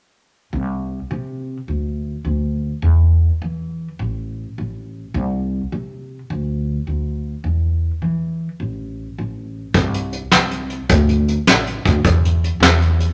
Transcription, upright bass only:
0.53 0.98 C2 medium
1.11 1.56 C3 medium
1.68 2.14 D2 medium
2.25 2.71 D2 medium
2.82 3.28 E2 medium
3.42 3.87 E3 medium
3.99 4.45 A1 medium
4.58 5.03 A1 medium
5.14 5.60 C2 medium
5.72 6.18 C3 medium
6.30 6.75 D2 medium
6.87 7.33 D2 medium
7.44 7.90 E2 medium
8.02 8.48 E3 medium
8.60 9.05 A1 medium
9.18 9.63 A1 medium
9.75 10.20 C2 loud
10.33 10.78 C2 medium
10.90 11.35 D2 loud
11.48 11.78 A1 medium
11.86 12.01 D2 loud
12.04 12.50 E2 loud
12.60 13.06 E2 loud

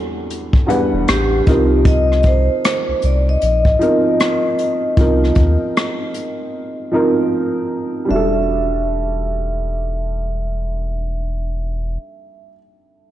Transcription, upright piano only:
0.00 0.66 E2 medium
0.00 1.48 F#3 medium
0.00 0.67 G3 medium
0.00 0.68 D4 medium
0.00 1.48 F#4 medium
0.00 1.48 A4 medium
0.66 1.45 E2 medium
0.66 1.46 G3 medium
0.66 1.46 D4 medium
0.66 1.47 B4 medium
0.66 1.46 F#5 medium
1.46 2.78 F3 medium
1.46 2.78 C4 medium
1.46 2.79 D#4 medium
1.46 2.79 A#4 medium
3.79 4.81 F3 medium
3.79 4.81 C4 medium
3.79 4.82 D#4 medium
3.79 4.82 A#4 medium
4.97 6.29 F3 medium
4.97 6.29 C4 medium
4.97 6.30 D#4 medium
4.97 6.30 A#4 medium
6.92 7.93 F3 medium
6.92 7.93 C4 medium
6.92 7.94 D#4 medium
6.92 7.94 A#4 medium
8.05 12.47 G3 medium
8.05 12.50 D4 medium
8.12 12.53 F#4 medium
8.12 12.57 A4 medium

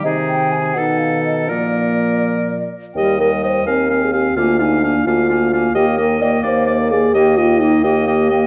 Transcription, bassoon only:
0.04 0.77 C3 soft
0.76 1.50 B2 soft
1.48 2.71 A#2 soft
2.95 3.58 D#2 soft
3.66 4.28 D#2 soft
4.37 4.98 D2 soft
5.06 5.67 D2 soft
5.74 6.36 D#2 medium
6.43 7.05 D#2 medium
7.14 7.75 D#2 medium
7.83 8.44 D#2 medium

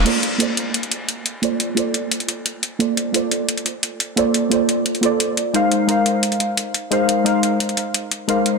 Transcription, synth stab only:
0.05 0.37 A#3 medium
0.05 0.38 F4 medium
0.05 0.38 A4 medium
0.05 0.38 C5 medium
0.05 0.39 D5 medium
0.38 1.40 A#3 medium
0.38 1.40 F4 medium
0.38 1.41 A4 medium
0.38 1.42 C5 medium
0.42 1.42 D5 medium
1.42 1.73 A#3 medium
1.42 1.75 F4 medium
1.42 1.75 A4 medium
1.42 1.76 C5 medium
1.42 1.76 D5 medium
1.75 2.77 A#3 medium
1.75 2.77 F4 medium
1.75 2.78 A4 medium
1.75 2.79 C5 medium
1.79 2.79 D5 medium
2.79 3.11 A#3 medium
2.79 3.12 F4 medium
2.79 3.12 A4 medium
2.79 3.13 C5 medium
2.79 3.13 D5 medium
3.12 4.14 A#3 medium
3.12 4.15 F4 medium
3.12 4.15 A4 medium
3.12 4.16 C5 medium
3.17 4.17 D5 medium
4.16 4.48 A#3 medium
4.16 4.49 F4 medium
4.16 4.50 A4 medium
4.16 4.50 C5 medium
4.16 4.50 D5 medium
4.50 5.00 A#3 medium
4.50 5.01 F4 medium
4.50 5.01 A4 medium
4.50 5.02 C5 medium
4.54 5.03 D5 medium
5.01 5.51 A#3 medium
5.01 5.52 F4 medium
5.01 5.53 A4 medium
5.01 5.53 C5 medium
5.05 5.54 D5 medium
5.53 5.86 G#3 medium
5.53 5.86 D#4 medium
5.53 5.87 A#4 medium
5.53 5.87 C5 medium
5.53 5.87 F5 loud
5.87 6.89 G#3 medium
5.87 6.89 D#4 medium
5.87 6.90 A#4 medium
5.87 6.90 C5 medium
5.91 6.91 F5 medium
6.91 7.22 G#3 medium
6.91 7.24 D#4 medium
6.91 7.24 A#4 medium
6.91 7.24 C5 medium
6.91 7.24 F5 medium
7.24 8.26 G#3 medium
7.24 8.26 D#4 medium
7.24 8.27 A#4 medium
7.24 8.27 C5 medium
7.28 8.28 F5 medium
8.28 8.58 G#3 medium
8.28 8.58 D#4 medium
8.28 8.58 A#4 medium
8.28 8.58 C5 medium
8.28 8.58 F5 medium

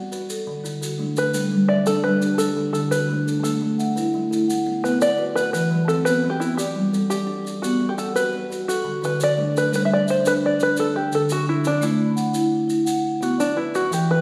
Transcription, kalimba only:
0.00 0.30 B3 medium
0.00 0.30 C4 medium
0.00 0.12 F#5 medium
0.12 0.64 B4 medium
0.47 0.82 D3 medium
0.64 1.17 E4 medium
0.81 1.15 A4 medium
0.99 1.34 A3 medium
1.17 1.69 A4 medium
1.34 1.69 D4 medium
1.51 1.87 G3 medium
1.70 2.22 D5 medium
1.87 2.39 A4 medium
2.04 2.39 G3 medium
2.22 2.74 G4 medium
2.57 2.91 D3 medium
2.75 3.27 E4 medium
2.93 3.26 A4 medium
3.11 3.45 A3 medium
3.27 3.79 A4 medium
3.45 3.79 D4 medium
3.61 3.96 A3 medium
3.79 4.31 E5 medium
3.96 4.48 B4 medium
4.14 4.49 A3 medium
4.31 4.83 A4 medium
4.66 5.01 B3 medium
4.83 5.36 C4 medium
5.01 5.35 F#5 medium
5.18 5.53 F#4 medium
5.36 5.89 F#5 medium
5.53 5.87 B4 medium
5.71 6.06 E3 medium
5.89 6.41 B4 medium
6.06 6.59 F#4 medium
6.23 6.58 E3 medium
6.40 6.93 E4 medium
6.75 7.10 G3 medium
6.93 7.46 A4 medium
7.10 7.44 D5 medium
7.27 7.62 D4 medium
7.45 7.98 D5 medium
7.63 7.98 G4 medium
7.80 8.15 B3 medium
7.98 8.51 F#5 medium
8.15 8.68 C4 medium
8.33 8.68 B3 medium
8.50 9.03 B4 medium
8.85 9.20 D3 medium
9.02 9.55 E4 medium
9.20 9.53 A4 medium
9.37 9.73 A3 medium
9.54 10.07 A4 medium
9.73 10.08 D4 medium

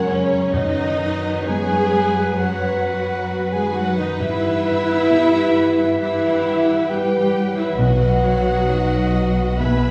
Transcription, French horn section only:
0.00 0.36 G#3 medium
0.00 0.36 A#4 medium
0.53 4.15 F#3 medium
0.53 4.15 B4 medium
4.20 7.62 E3 medium
4.20 9.56 B4 medium
7.79 9.56 F#3 medium
9.59 9.91 E3 medium
9.59 9.91 G#4 medium

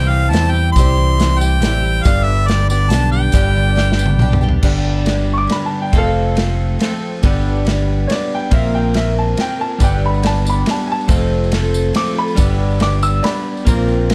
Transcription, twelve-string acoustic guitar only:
0.00 0.32 G3 medium
0.00 0.32 C4 medium
0.00 0.33 E4 medium
0.00 0.35 G4 medium
0.32 0.78 G3 medium
0.32 0.76 C4 medium
0.32 0.77 E4 medium
0.32 0.78 G4 medium
0.76 1.19 C3 medium
0.76 1.20 G3 medium
0.76 1.20 C4 medium
0.76 1.20 E4 medium
0.76 1.22 G4 medium
1.20 1.41 G3 medium
1.20 1.42 C4 medium
1.20 1.41 E4 medium
1.20 1.40 G4 medium
1.41 1.61 C4 soft
1.41 1.62 E4 soft
1.41 1.62 G4 medium
1.61 2.05 G3 medium
1.61 2.04 C4 medium
1.61 2.05 E4 medium
1.61 2.05 G4 medium
2.04 2.48 G2 medium
2.04 2.48 D3 medium
2.04 2.48 G3 medium
2.04 2.49 B3 medium
2.04 2.50 D4 medium
2.04 2.51 G4 medium
2.48 2.70 G3 medium
2.48 2.71 B3 medium
2.48 2.71 D4 medium
2.48 2.69 G4 medium
2.70 2.90 G3 soft
2.70 2.91 B3 soft
2.70 2.92 D4 medium
2.70 2.92 G4 soft
2.91 3.34 G3 medium
2.91 3.35 B3 medium
2.91 3.35 D4 medium
2.91 3.35 G4 medium
3.34 3.78 G2 medium
3.34 3.78 D3 medium
3.34 3.74 G3 medium
3.34 3.75 B3 medium
3.34 3.76 D4 medium
3.34 3.76 G4 loud
3.75 4.18 G3 medium
3.75 4.18 B3 medium
3.75 4.20 D4 medium
3.75 4.21 G4 medium
4.19 4.42 G3 medium
4.19 4.42 B3 medium
4.19 4.41 D4 medium
4.19 4.40 G4 medium
4.41 4.63 G3 soft
4.41 4.63 B3 soft
4.41 4.63 D4 soft
4.41 4.64 G4 medium
4.63 5.07 G2 medium
4.63 5.07 D3 medium
4.63 5.04 G3 medium
4.63 5.05 B3 medium
4.63 5.07 D4 medium
4.63 5.07 G4 medium
5.06 5.46 G3 medium
5.06 5.48 B3 medium
5.06 5.48 D4 medium
5.06 5.49 G4 medium
5.47 5.92 G3 medium
5.47 5.93 B3 medium
5.47 5.94 D4 medium
5.47 5.94 G4 medium
5.93 6.37 F2 medium
5.93 6.37 C3 medium
5.93 6.34 F3 medium
5.93 6.36 A3 medium
5.93 6.36 C4 medium
5.93 6.37 A4 medium
6.35 6.78 F3 medium
6.35 6.79 A3 medium
6.35 6.80 C4 medium
6.35 6.80 A4 medium
6.79 7.22 F3 medium
6.79 7.23 A3 medium
6.79 7.24 C4 medium
6.79 7.24 A4 medium
7.23 7.66 G2 medium
7.23 7.66 D3 medium
7.23 7.63 G3 medium
7.23 7.65 B3 medium
7.23 7.66 D4 medium
7.23 7.67 G4 loud
7.65 8.08 G3 medium
7.65 8.09 B3 medium
7.65 8.10 D4 medium
7.65 8.11 G4 medium
8.09 8.52 G3 medium
8.09 8.52 B3 medium
8.09 8.52 D4 medium
8.09 8.53 G4 medium
8.51 8.95 A#2 medium
8.51 8.92 F3 medium
8.51 8.94 A#3 medium
8.51 8.95 C4 medium
8.51 8.95 A#4 medium
8.94 9.36 F3 soft
8.94 9.38 A#3 medium
8.94 9.38 C4 medium
8.94 9.39 A#4 medium
9.37 9.59 F3 medium
9.37 9.60 A#3 medium
9.37 9.60 C4 medium
9.37 9.58 A#4 medium
9.59 9.81 A#3 soft
9.59 9.82 C4 soft
9.59 9.81 A#4 soft
9.81 10.24 G2 medium
9.81 10.24 D3 medium
9.81 10.21 G3 medium
9.81 10.22 B3 medium
9.81 10.22 D4 medium
9.81 10.23 G4 medium
10.22 10.45 G3 medium
10.22 10.45 B3 medium
10.22 10.45 D4 medium
10.22 10.44 G4 medium
10.45 10.65 G3 soft
10.45 10.67 B3 soft
10.45 10.67 D4 soft
10.45 10.67 G4 medium
10.66 11.08 G3 medium
10.66 11.08 B3 medium
10.66 11.09 D4 medium
10.66 11.10 G4 medium
11.08 11.52 F2 medium
11.08 11.52 C3 medium
11.08 11.50 F3 medium
11.08 11.52 A3 medium
11.08 11.52 C4 medium
11.08 11.53 A4 medium
11.52 11.92 F3 medium
11.52 11.93 A3 medium
11.52 11.95 C4 medium
11.52 11.95 A4 medium
11.93 12.16 F3 medium
11.93 12.16 A3 medium
11.93 12.15 C4 medium
11.93 12.14 A4 medium
12.15 12.36 F3 soft
12.15 12.37 A3 soft
12.15 12.38 C4 soft
12.15 12.37 A4 soft
12.36 12.80 G2 medium
12.36 12.81 D3 medium
12.36 12.78 G3 medium
12.36 12.79 B3 medium
12.36 12.80 D4 medium
12.36 12.81 G4 medium
12.79 13.21 G3 medium
12.79 13.23 B3 medium
12.79 13.23 D4 medium
12.79 13.25 G4 medium
13.23 13.66 G3 medium
13.23 13.67 B3 medium
13.23 13.67 D4 medium
13.23 13.68 G4 medium
13.67 14.10 A#2 medium
13.67 14.09 F3 medium
13.67 14.10 A#3 medium
13.67 14.11 C4 medium
13.67 14.11 A#4 medium
14.10 14.15 F3 medium
14.10 14.15 A#3 medium
14.10 14.15 C4 medium

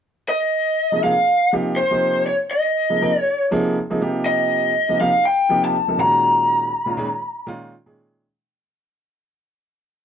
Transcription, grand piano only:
0.92 0.99 C3 medium
0.92 0.99 F3 medium
0.92 1.00 A#3 medium
0.92 1.00 D#4 medium
0.92 1.00 G#4 medium
1.03 1.12 C3 medium
1.03 1.12 F3 medium
1.03 1.13 A#3 medium
1.03 1.13 D#4 medium
1.03 1.13 G#4 medium
1.17 1.22 D#4 soft
1.17 1.23 G#4 soft
1.53 1.77 C3 medium
1.53 1.77 F3 medium
1.53 1.77 A#3 medium
1.53 1.77 D#4 medium
1.53 1.78 G4 medium
1.90 2.27 C3 medium
1.90 2.27 F3 medium
1.90 2.27 A#3 medium
1.90 2.27 D#4 medium
1.90 2.27 G4 medium
2.90 2.97 C3 medium
2.90 2.97 F3 medium
2.90 2.98 A#3 medium
2.90 2.98 D#4 medium
2.90 2.98 G#4 medium
3.01 3.10 C3 medium
3.01 3.10 F3 medium
3.01 3.11 A#3 medium
3.01 3.11 D#4 medium
3.01 3.11 A#4 medium
3.16 3.21 D#4 soft
3.16 3.21 G#4 soft
3.51 3.75 C3 medium
3.51 3.76 F3 medium
3.51 3.76 A#3 medium
3.51 3.76 D#4 medium
3.51 3.76 G#4 loud
3.90 4.00 C3 medium
3.90 4.00 F3 medium
3.90 4.00 A#3 medium
3.90 4.01 D#4 medium
3.90 4.01 G#4 medium
4.01 4.71 C3 medium
4.01 4.71 F3 medium
4.01 4.71 A#3 medium
4.01 4.71 D#4 medium
4.01 4.71 G4 medium
4.89 4.96 C3 medium
4.89 4.96 F3 medium
4.89 4.96 A#3 medium
4.89 4.96 D#4 medium
4.89 4.97 G4 medium
5.00 5.09 C3 medium
5.00 5.09 F3 medium
5.00 5.09 A#3 medium
5.00 5.09 D#4 medium
5.00 5.09 G4 medium
5.14 5.19 D#4 soft
5.14 5.20 G4 soft
5.49 5.74 C3 medium
5.49 5.74 F3 medium
5.49 5.74 A#3 medium
5.49 5.74 D#4 medium
5.49 5.74 G4 medium
5.87 5.99 C3 medium
5.87 5.99 F3 medium
5.87 5.99 A#3 medium
5.87 5.99 D#4 medium
5.87 5.99 A4 medium
5.98 6.69 A#2 medium
5.98 6.69 D#3 medium
5.98 6.69 G#3 medium
5.98 6.69 C#4 medium
5.98 6.69 F#4 medium
6.86 6.94 A#2 medium
6.86 6.94 D#3 medium
6.86 6.94 G#3 medium
6.86 6.94 C#4 medium
6.86 6.95 F4 medium
6.97 7.07 A#2 loud
6.97 7.07 D#3 medium
6.97 7.07 G#3 medium
6.97 7.07 C#4 loud
6.97 7.07 G#4 loud
7.10 7.17 C#4 soft
7.10 7.17 F4 soft
7.47 7.72 A#2 loud
7.47 7.72 D#3 loud
7.47 7.72 G#3 medium
7.47 7.73 C#4 medium
7.47 7.73 F4 loud
7.86 8.23 A#2 medium
7.86 8.23 D#3 medium
7.86 8.23 G#3 medium
7.86 8.23 C#4 medium
7.86 8.23 G#4 medium

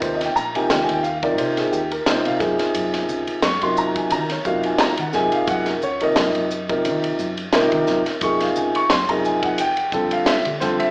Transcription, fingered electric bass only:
0.02 0.28 D#2 loud
0.36 0.51 A#1 medium
0.56 muted fingered electric bass stroke soft
0.71 0.85 D#2 medium
0.90 1.38 D#2 medium
1.38 1.65 C3 medium
1.73 1.99 D#2 medium
2.26 2.38 C3 medium
2.41 2.55 F#2 medium
2.75 3.02 F#2 medium
3.09 3.24 C#2 medium
3.28 muted fingered electric bass stroke soft
3.43 3.58 F#2 medium
3.62 4.13 F#2 medium
4.11 4.37 D#3 medium
4.45 4.71 F#2 medium
4.99 5.11 D#3 medium
5.14 5.29 F#2 medium
5.48 5.74 F#2 loud
5.83 5.97 C#2 medium
6.02 muted fingered electric bass stroke soft
6.16 6.31 F#2 medium
6.35 6.86 F#2 medium
6.85 7.11 D#3 medium
7.19 7.45 F#2 medium
7.72 7.84 D#3 medium
7.88 8.02 F#2 medium
8.21 8.48 F#2 loud
8.57 8.71 C#2 medium
8.76 muted fingered electric bass stroke soft
8.91 9.05 F#2 medium
9.09 9.59 F#2 medium
9.59 9.85 F2 loud
9.92 10.18 F2 medium
10.46 10.58 D3 medium
10.62 10.76 F2 medium

